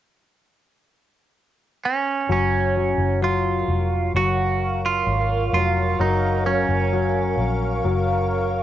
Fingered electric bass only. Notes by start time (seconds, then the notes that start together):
2.29 F#1
2.98 F#1
3.68 F1
4.14 F#1
5.07 G#1
5.53 F1
5.99 F#1
6.68 F#1
7.37 A#1
7.84 F#1